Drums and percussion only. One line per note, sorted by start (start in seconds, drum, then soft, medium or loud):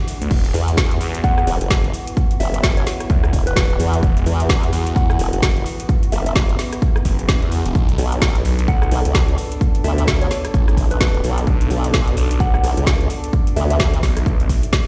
0.08 open hi-hat loud
0.08 shaker medium
0.22 closed hi-hat medium
0.22 shaker soft
0.31 kick loud
0.31 crash medium
0.31 shaker soft
0.45 closed hi-hat medium
0.45 shaker soft
0.54 open hi-hat loud
0.54 shaker medium
0.68 closed hi-hat medium
0.68 shaker soft
0.77 kick loud
0.77 snare loud
0.77 shaker soft
0.91 closed hi-hat medium
1.01 open hi-hat loud
1.01 shaker medium
1.15 closed hi-hat medium
1.15 shaker soft
1.24 kick loud
1.24 shaker soft
1.38 cross-stick medium
1.38 shaker soft
1.47 open hi-hat loud
1.47 shaker medium
1.61 closed hi-hat medium
1.61 shaker soft
1.70 kick loud
1.70 snare loud
1.70 shaker soft
1.84 closed hi-hat soft
1.94 open hi-hat loud
1.94 shaker medium
2.07 closed hi-hat medium
2.07 shaker soft
2.17 kick loud
2.17 shaker soft
2.31 closed hi-hat medium
2.31 shaker soft
2.40 open hi-hat loud
2.40 shaker medium
2.54 closed hi-hat medium
2.54 shaker soft
2.63 kick loud
2.63 snare loud
2.63 shaker soft
2.77 closed hi-hat medium
2.87 snare medium
2.87 open hi-hat loud
2.87 shaker medium
3.00 cross-stick medium
3.00 closed hi-hat medium
3.00 shaker soft
3.10 kick loud
3.10 shaker soft
3.24 cross-stick medium
3.24 shaker soft
3.33 kick medium
3.33 open hi-hat loud
3.33 shaker medium
3.47 closed hi-hat medium
3.47 shaker soft
3.56 kick loud
3.56 snare loud
3.56 shaker soft
3.70 closed hi-hat soft
3.80 open hi-hat loud
3.80 shaker medium
3.93 closed hi-hat medium
3.93 shaker soft
4.03 kick loud
4.03 shaker soft
4.17 closed hi-hat soft
4.17 shaker soft
4.26 open hi-hat loud
4.26 shaker medium
4.40 closed hi-hat medium
4.40 shaker soft
4.49 kick loud
4.49 snare loud
4.49 shaker soft
4.63 closed hi-hat medium
4.73 open hi-hat loud
4.73 shaker medium
4.87 closed hi-hat medium
4.87 shaker soft
4.96 kick loud
4.96 shaker soft
5.10 cross-stick medium
5.10 shaker soft
5.19 open hi-hat loud
5.19 shaker medium
5.33 closed hi-hat medium
5.33 shaker soft
5.42 kick loud
5.42 snare loud
5.42 shaker soft
5.56 closed hi-hat soft
5.66 open hi-hat loud
5.66 shaker medium
5.80 closed hi-hat medium
5.80 shaker soft
5.89 kick loud
5.89 shaker soft
6.03 closed hi-hat soft
6.03 shaker soft
6.12 open hi-hat loud
6.12 shaker medium
6.26 closed hi-hat medium
6.26 shaker soft
6.36 kick loud
6.36 snare loud
6.36 shaker soft
6.49 closed hi-hat medium
6.59 snare medium
6.59 open hi-hat loud
6.59 shaker medium
6.73 cross-stick medium
6.73 closed hi-hat medium
6.73 shaker soft
6.82 kick loud
6.82 shaker soft
6.96 cross-stick medium
6.96 shaker soft
7.05 kick medium
7.05 open hi-hat loud
7.05 shaker medium
7.19 closed hi-hat medium
7.19 shaker soft
7.29 kick loud
7.29 snare loud
7.29 shaker soft
7.42 closed hi-hat soft
7.52 open hi-hat loud
7.52 shaker medium
7.66 closed hi-hat medium
7.66 shaker soft
7.75 kick loud
7.75 shaker soft
7.89 closed hi-hat medium
7.89 shaker soft
7.98 open hi-hat loud
7.98 shaker medium
8.12 closed hi-hat medium
8.12 shaker soft
8.22 kick loud
8.22 snare loud
8.22 shaker soft
8.35 closed hi-hat medium
8.45 open hi-hat loud
8.45 shaker medium
8.59 closed hi-hat medium
8.59 shaker soft
8.68 kick loud
8.68 shaker soft
8.82 cross-stick medium
8.82 shaker soft
8.91 open hi-hat loud
8.91 shaker medium
9.05 closed hi-hat medium
9.05 shaker soft
9.15 kick loud
9.15 snare loud
9.15 shaker soft
9.28 closed hi-hat soft
9.38 open hi-hat loud
9.38 shaker medium
9.52 closed hi-hat medium
9.52 shaker soft
9.61 kick loud
9.61 shaker soft
9.75 closed hi-hat medium
9.75 shaker soft
9.84 open hi-hat loud
9.84 shaker medium
9.98 closed hi-hat medium
9.98 shaker soft
10.07 kick loud
10.07 snare loud
10.07 shaker soft
10.21 closed hi-hat medium
10.31 snare medium
10.31 open hi-hat loud
10.31 shaker medium
10.45 cross-stick medium
10.45 closed hi-hat medium
10.45 shaker soft
10.54 kick loud
10.54 shaker soft
10.68 cross-stick medium
10.68 shaker soft
10.77 kick medium
10.77 open hi-hat loud
10.77 shaker medium
10.91 closed hi-hat medium
10.91 shaker soft
11.01 kick loud
11.01 snare loud
11.01 shaker soft
11.14 closed hi-hat soft
11.24 open hi-hat loud
11.24 shaker medium
11.38 closed hi-hat medium
11.38 shaker soft
11.47 kick loud
11.47 shaker soft
11.61 closed hi-hat medium
11.61 shaker soft
11.70 open hi-hat loud
11.70 shaker medium
11.84 closed hi-hat medium
11.84 shaker soft
11.94 kick loud
11.94 snare loud
11.94 shaker soft
12.08 closed hi-hat medium
12.17 open hi-hat loud
12.17 shaker medium
12.31 closed hi-hat medium
12.31 shaker soft
12.40 kick loud
12.40 shaker soft
12.54 cross-stick medium
12.54 shaker soft
12.64 open hi-hat loud
12.64 shaker medium
12.77 closed hi-hat medium
12.77 shaker soft
12.87 kick loud
12.87 snare loud
12.87 shaker soft
13.01 closed hi-hat soft
13.10 open hi-hat loud
13.10 shaker medium
13.24 closed hi-hat medium
13.24 shaker soft
13.33 kick loud
13.33 shaker soft
13.47 closed hi-hat medium
13.47 shaker soft
13.56 open hi-hat loud
13.56 shaker medium
13.70 closed hi-hat medium
13.70 shaker soft
13.80 kick loud
13.80 snare loud
13.80 shaker soft
13.94 closed hi-hat medium
13.94 shaker soft
14.03 kick medium
14.03 snare medium
14.03 open hi-hat loud
14.03 shaker medium
14.17 cross-stick medium
14.17 closed hi-hat medium
14.17 shaker soft
14.26 kick loud
14.26 shaker soft
14.40 closed hi-hat soft
14.40 shaker soft
14.49 kick medium
14.49 open hi-hat loud
14.49 shaker medium
14.63 closed hi-hat medium
14.63 shaker soft
14.73 kick loud
14.73 snare loud
14.73 shaker soft